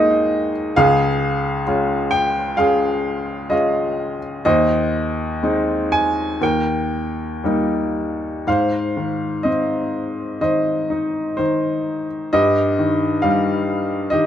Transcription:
upright piano
Already playing: D#2 G#3 A#3 D#4 G#4 D#5 F5 G5
0.76 C#2 G#4 F5
1.67 G#3 C#4 F4
2.11 G5
2.57 G#3 C#4 F4 G#4 F5
3.50 G#3 C#4 F4 D#5
4.45 D#2 C5 D#5
5.43 G#3 C4 D#4
5.92 G#5
6.41 D#2 A#4 G5
7.44 G3 A#3 D#4
8.47 G#2 C5 F5
8.97 D#3
9.43 C4 D#5
10.41 D#3 C5 D#5
10.90 D#4
11.37 D#3 C5
12.33 G2 G4 D#5
12.79 D#3
13.22 G3 F5
14.10 D#3 G4 D#5

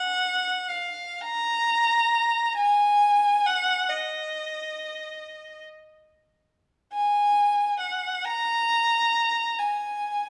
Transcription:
violin
Already playing: F#5
0.69 F5
1.21 A#5
2.57 G#5
3.46 F#5
3.89 D#5
6.93 G#5
7.80 F#5
8.25 A#5
9.59 G#5

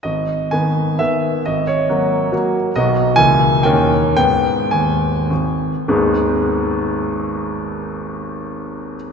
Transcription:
grand piano
0.03 G#1 D#5
0.51 D#3 B3 B4 G#5
0.99 D#3 B3 B4 E5
1.46 G#1 D#5
1.67 C#5
1.89 F#3 A#3 F#4
2.32 F#3 A#3 F#4
2.76 B1 F#3 B3 F#4 D#5
3.16 C#2 E3 A#3 A#4 G#5
3.63 D#2 D#3 C#4 A#4 G5
4.16 G#2 B3 B4 G5
4.71 D#2 G#5
5.30 G#1
5.88 G#1 D#2 G#3 B3 D#4 G#4

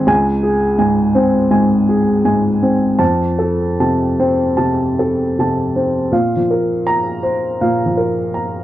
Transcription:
upright piano
Already playing: D#3 G#4 C5 G#5
0.07 C#2 G#5
0.43 G#4
0.79 G#2 G#5
1.15 C4 C5
1.51 G#2 G#5
1.89 G#4
2.25 G#2 G#5
2.62 C4 C5
2.99 F2 A5
3.39 A4
3.80 C3 A5
4.20 C4 C5
4.57 C3 A5
4.99 A4
5.39 C3 A5
5.76 C4 C5
6.12 A#2 F5
6.37 F3
6.51 A#4
6.87 A#5
7.23 C5
7.61 A#2 F5
7.86 F3
7.97 A#4
8.34 A#5

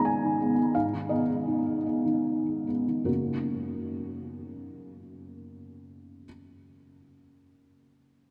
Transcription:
felt piano
Already playing: G#2 D#3 G#3 B3 D#5
0.00 A#5
0.05 G#5
0.24 D#3
0.40 G#3 B3
0.58 G#3
0.75 G#2 F5
0.94 D#3
1.09 G#3 B3 D#5
1.29 G#3
1.48 D#3
1.66 G#3
1.86 G#3 B3
2.06 D#3
2.46 G#3
2.67 G#3 B3
2.88 D#3
3.04 F#2 C#3 A#3 C#4 F#4 A#4

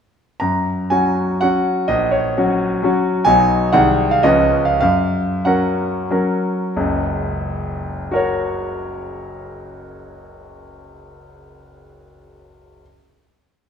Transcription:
grand piano
0.40 F#2 A#5
0.90 F#3 C#4 F#4 G#5
1.41 F#3 C#4 F#4 F#5
1.88 A#1 D#5
2.11 C#5
2.37 F#3 C#4 F#4
2.83 F#3 C#4 F#4
3.25 B1 F#3 D#4 F#4 G#5
3.73 C2 D#3 D#4 G#4 F#5
4.11 F5
4.23 C#2 F3 C#4 B4 D#5
4.65 F5
4.80 F#2 F5
5.45 F#3 C#4 A#4 F#5
6.11 F#3 C#4 A#4
6.76 F#1 C#2
8.11 F#4 A#4
8.16 C#5

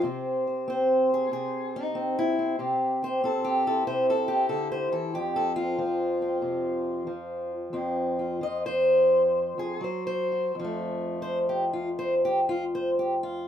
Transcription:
steel-string acoustic guitar
Already playing: C4
0.03 C3 C5
0.47 C5
0.68 C4 C5
1.14 G#4
1.31 C3 G#4
1.76 D#4
1.95 C4
2.19 E4
2.39 C4
2.59 C3 G4
3.03 G4 C5
3.24 C4 A4
3.44 G4
3.67 E4 A4
3.87 C3 C5
4.10 A4
4.28 E4 G4
4.49 D3 A4
4.72 C5
4.92 E3 A4
5.14 F2 G4
5.36 A4
5.56 C4 F4
5.78 F3
6.22 C4
6.42 C3
7.07 F3
7.73 F2 C4
8.19 F4
8.41 F3 D#5
8.66 C5
9.58 F2 G#4
9.81 F#3 C5
10.07 C5
10.32 F#4
10.55 F2
10.59 F3
10.64 A3
11.22 C5
11.49 G4
11.73 F4
11.99 C5
12.25 G4
12.49 F4
12.75 C5
12.99 G4
13.23 F4

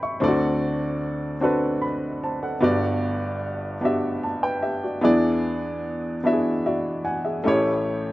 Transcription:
upright piano
Already playing: A1 A2 B4 G5 B5
0.03 E5 C#6
0.20 D2 D3 C4 D4 E4 A4 D5
0.28 F#4
1.41 C4 D4 F#4 A4 B4
1.82 D5 B5
2.23 C5 A5
2.43 A4 F#5
2.60 G1 G2 B3 D4 F#4 G4 D5
3.81 B3 D4 F#4 G4
3.85 E5
4.23 A5
4.43 B4 G5
4.62 G4 E5
4.83 F#4 D5
5.01 E2 E3 B3 D4 E4 G#4 D5
6.24 B3 D4 E4 F#4 E5
6.33 G#4
6.66 F#4 D5 E5
7.05 F#5 G#5
7.25 G#4 E5
7.44 A1 A2 A3 C#4 E4 G4
7.48 C#5

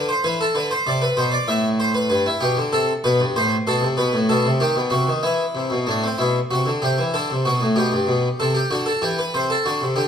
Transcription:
harpsichord
Already playing: D3
0.09 C5
0.24 E3 B4
0.41 A4
0.55 D3 B4
0.71 C5
0.87 C3 D5
1.02 B4
1.17 B2 C5
1.32 D5
1.48 A2 E5
1.80 C5
1.95 B4
2.10 G2 B4
2.26 E4
2.41 B2 G4
2.57 D3
2.73 C3 A4
3.04 B2 B4
3.20 G2
3.36 A2 C5
3.67 B2 A4
3.81 C3
3.97 B2 B4
4.13 A2
4.29 B2 A4
4.45 C3
4.60 D#3 G4
4.76 B2
4.90 C3 F#4
5.07 D#3
5.23 E3 E4
5.55 C3
5.70 B2
5.87 A2 D4
6.04 C4
6.18 B2 E4
6.51 C3 F#4
6.66 D3
6.82 C3 G4
6.98 E3
7.14 D3 A4
7.31 C3
7.45 B2 F#4
7.61 A2
7.76 B2 G4
7.92 G2
8.07 B2
8.40 C3 A4
8.55 G4
8.71 D3 F#4
8.86 A4
9.02 E3 G4
9.19 B4
9.34 C3 C5
9.50 A4
9.66 D3 F#4
9.81 C3
9.96 D3 G4

